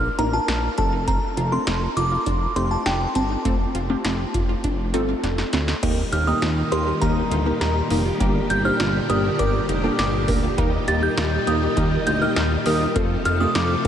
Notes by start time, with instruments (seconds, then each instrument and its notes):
Already playing: synth bell F6
0.18 analog synth bass A1, synth pluck A#3 D4 F4 A#4, synth arpeggio sound D#4, synth bell A#5, closed hi-hat
0.33 synth arpeggio sound F4, synth bell A5
0.48 analog synth bass A#1, synth arpeggio sound D4, snare, closed hi-hat
0.78 analog synth bass F1, synth pluck A3 C4 F4 A4, synth arpeggio sound D4, synth bell A5, kick, closed hi-hat
0.93 synth arpeggio sound D#4
1.08 synth arpeggio sound C4, synth bell A#5, kick, closed hi-hat
1.37 analog synth bass F1, synth arpeggio sound F4, closed hi-hat
1.52 synth pluck A3 C4 F4 A4, synth arpeggio sound D4, synth bell C6
1.67 analog synth bass F1, synth arpeggio sound D#4, snare, closed hi-hat
1.97 analog synth bass F1, synth arpeggio sound F4, synth bell D6, closed hi-hat
2.12 synth arpeggio sound F4
2.26 analog synth bass F1, synth arpeggio sound D4, kick, closed hi-hat
2.56 analog synth bass F1, synth pluck A3 C4 F4 G4, synth arpeggio sound D#4, synth bell C6, closed hi-hat
2.71 synth arpeggio sound F4, synth bell A5
2.86 analog synth bass F1, synth arpeggio sound D4, synth bell G5, snare, closed hi-hat
3.15 analog synth bass G1, synth arpeggio sound C4, synth bell A5, closed hi-hat
3.30 synth arpeggio sound D#4
3.45 analog synth bass F1, synth pluck A3 C4 F4 A4, synth arpeggio sound C4, kick, closed hi-hat
3.75 analog synth bass F1, synth arpeggio sound F4, closed hi-hat
3.90 synth pluck A3 C4 F4 G4, synth arpeggio sound D4
4.05 analog synth bass F1, synth arpeggio sound D#4, snare, closed hi-hat
4.34 analog synth bass F1, synth arpeggio sound F4, kick, closed hi-hat
4.49 synth arpeggio sound F4
4.64 analog synth bass F1, synth arpeggio sound D4, kick, closed hi-hat
4.94 analog synth bass G1, synth pluck A3 C4 F4 A4, synth arpeggio sound D#4, closed hi-hat
5.09 synth arpeggio sound F4
5.23 analog synth bass F1, synth arpeggio sound D4, snare, closed hi-hat
5.38 snare
5.53 analog synth bass D2, synth arpeggio sound C4, snare, closed hi-hat
5.68 synth arpeggio sound D#4, snare
5.83 analog synth bass D#2, string machine A#2 D#3 G3 D#4 G4, synth pluck A#3 D#4 G4 A#4, synth arpeggio sound D#4, kick, closed hi-hat, crash
6.12 analog synth bass D#2, synth arpeggio sound G4, synth bell F6, closed hi-hat
6.27 synth pluck A#3 D#4 G4 A#4, synth arpeggio sound D#4, synth bell D#6
6.42 analog synth bass D#2, synth arpeggio sound F4, snare, closed hi-hat
6.72 analog synth bass D#2, synth pluck A#3 D#4 G4 A#4, synth arpeggio sound G4, synth bell C6, closed hi-hat
6.87 synth arpeggio sound G4
7.01 analog synth bass D#2, synth pluck A#3 D#4 G4 A#4, synth arpeggio sound D#4, synth bell A#5, kick, closed hi-hat
7.31 analog synth bass D2, synth arpeggio sound F4, closed hi-hat
7.46 synth pluck A#3 D#4 G4 A#4, synth arpeggio sound G4
7.61 analog synth bass D#2, synth arpeggio sound D#4, synth bell A#5, snare, closed hi-hat
7.90 analog synth bass F1, synth pluck A#3 D#4 G4 A#4, synth arpeggio sound D#4, open hi-hat
8.06 synth arpeggio sound F4
8.20 analog synth bass G1, string machine D3 D4, synth pluck A#3 D4 G4 A#4, synth arpeggio sound D4, kick, closed hi-hat
8.50 analog synth bass G1, synth arpeggio sound F4, synth bell G6, closed hi-hat
8.65 synth pluck A#3 D4 G4 C5, synth arpeggio sound D#4, synth bell F6
8.80 analog synth bass G1, synth arpeggio sound F4, snare, closed hi-hat
9.10 analog synth bass G1, synth pluck A#3 D4 G4 A#4, synth arpeggio sound G4, synth bell D#6, closed hi-hat
9.24 synth arpeggio sound G4
9.39 analog synth bass G1, synth pluck A#3 D4 G4 A#4, synth arpeggio sound D4, synth bell D6, kick, closed hi-hat
9.69 analog synth bass F1, synth arpeggio sound D#4, closed hi-hat
9.84 synth pluck A#3 D4 G4 A4, synth arpeggio sound F4
9.99 analog synth bass G1, synth arpeggio sound D4, synth bell D6, snare, closed hi-hat
10.28 analog synth bass D2, synth pluck A#3 D4 G4 A#4, synth arpeggio sound D4, kick, open hi-hat
10.43 synth arpeggio sound F4
10.58 analog synth bass D#2, string machine D#3 G3 D#4, synth pluck A#3 D#4 G4 A#4, synth arpeggio sound D#4, kick, closed hi-hat
10.88 analog synth bass D#2, synth arpeggio sound G4, synth bell A6, closed hi-hat
11.03 synth pluck A#3 D#4 G4 A#4, synth arpeggio sound D#4, synth bell G6
11.17 analog synth bass D#2, synth arpeggio sound F4, snare, closed hi-hat
11.47 analog synth bass D#2, synth pluck A#3 D#4 G4 A#4, synth arpeggio sound G4, synth bell D#6, closed hi-hat
11.62 synth arpeggio sound G4
11.77 analog synth bass D#2, synth pluck A#3 D#4 G4 A#4, synth arpeggio sound D#4, kick, closed hi-hat
12.07 analog synth bass D2, synth arpeggio sound F4, synth bell G6, closed hi-hat
12.21 synth pluck A#3 D#4 G4 A#4, synth arpeggio sound G4, synth bell F6
12.36 analog synth bass D#2, synth arpeggio sound D#4, snare, closed hi-hat
12.66 analog synth bass D#2, synth pluck A#3 D#4 G4 A#4, synth arpeggio sound D#4, synth bell D#6, open hi-hat
12.81 synth arpeggio sound F4
12.96 analog synth bass F2, string machine C3 F3 A3 F4 A4, synth pluck A3 C4 F4 A4, synth arpeggio sound C4, kick, closed hi-hat
13.25 analog synth bass F2, synth arpeggio sound F4, synth bell F6, closed hi-hat
13.40 synth pluck A3 C4 F4 G4, synth arpeggio sound D4, synth bell D#6
13.55 analog synth bass F2, synth arpeggio sound D#4, synth bell D6, snare, closed hi-hat